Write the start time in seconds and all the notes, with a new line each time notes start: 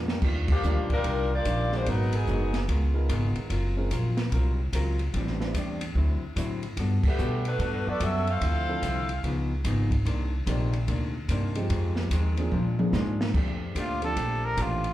Already playing: F2
0.08 D#2 G3 A#3 D4 G4, snare
0.22 D#2 D#3 G3 D4 F4, kick, crash
0.48 F3 A#3 D4 G4, kick, crash
0.63 D2 D#3 G3 A#3 D4 D#4 F4, hi-hat pedal
0.77 A#1
0.90 G1 G3 D4 F4 A#4, kick, ride
1.04 C2 D#3 G3 D4 F4, kick, ride
1.33 A#3 F4 G4 D5
1.45 A#1 D#3 G3 D4 F4, kick, hi-hat pedal, ride
1.72 G#3 B3 D4 D#4 F4 F#4 A#4 C5, snare
1.86 G#1 G#2 F#3 B3 D#4 A#4, kick, ride
2.12 F#3 B3 D#4 G#4, ride
2.27 F#1 G#2 F#3 G#3 B3 D#4 F#4 A#4, kick, hi-hat pedal
2.54 snare, ride
2.68 C#2 C#3 B3 F4 A#4, kick, ride
2.94 G#3 B3 D#4 F4 A#4
3.09 G#1 C#3 B3 F4 A#4, kick, hi-hat pedal, ride
3.35 muted upright bass stroke, ride
3.50 F#1 F#3 C4 F4 A#4, kick, ride
3.77 G#3 C4 C#4 F4 A#4
3.91 A#1 F#3 C4 F4 A#4, kick, hi-hat pedal, ride
4.17 snare, ride
4.32 C2 F#3 C4 F4 A#4, kick, ride
4.73 C#2 F#3 C4 F4 A#4, kick, hi-hat pedal, ride
4.99 ride
5.14 A1 A2 G3 C4 D4, kick, ride
5.27 snare
5.40 G3 C4 D4 E4 B4, snare
5.54 E2 A2 G3 C4 D4, kick, hi-hat pedal, ride
5.81 ride
5.95 D2 D3 F#3 C4 E4, kick
6.36 A2 D3 F#3 C4 E4, kick, hi-hat pedal, ride
6.63 ride
6.77 G2 G3 B3 F#4 A4, kick, ride
7.03 D3 A3 B3 G4, muted upright bass stroke, kick, crash
7.18 B2 G3 B3 F#4 A4, hi-hat pedal
7.45 A3 D4 F#4 B4, ride
7.59 A2 G3 B3 F#4 A4, kick, ride
7.73 G2
7.87 F#2 B3 F#4 A4 D5
8.00 F#2 G3 B3 C#4 F#4 A4 E5, kick, hi-hat pedal, ride
8.27 C4 A4 E5 F5, ride
8.41 D2 D3 F3 C4 E4, kick, ride
8.68 F3 C4 D4 E4 A4
8.82 C2 D3 F3 C4 E4, kick, hi-hat pedal, ride
9.09 ride
9.23 C#2 C#3 F3 B3 D#4, kick, ride
9.64 G#1 C#3 F3 B3 D#4, kick, hi-hat pedal, ride
9.91 kick, ride
10.05 C2 C3 D#3 A#3 D4, kick, ride
10.47 A#1 C3 D#3 A#3 C4 D4 G4, kick, hi-hat pedal, ride
10.73 ride
10.87 D2 C3 D#3 A#3 D4, kick, ride
11.28 G2 C3 D#3 A#3 D4, kick, hi-hat pedal, ride
11.55 F3 G#3 C4 D#4 G4, ride
11.69 F2 D#3 G#3 C4, kick, ride
11.96 snare
12.11 D#2 F2 D#3 G#3 C4, kick, hi-hat pedal, ride
12.37 F3 A#3 C4 D4 G#4, ride
12.51 A#2 F3 G#3 D4, high tom
12.79 F3 A#3 C4 D4 G#4, high tom
12.93 G#2 A#2 F3 G#3 D4, snare, hi-hat pedal
13.21 snare
13.34 F2 A#2 D3 A3 C4 D4 G4, kick, crash
13.75 D2 A#2 A3 D4 G4, kick, hi-hat pedal, ride
13.80 F4
14.02 F3 A3 C4 D4 G4 A4, ride
14.16 A#1 A#2 A3 D4 G4, kick, ride
14.45 A#4
14.57 A1 A#2 A3 D4 G4, kick, hi-hat pedal, ride
14.62 F4
14.84 ride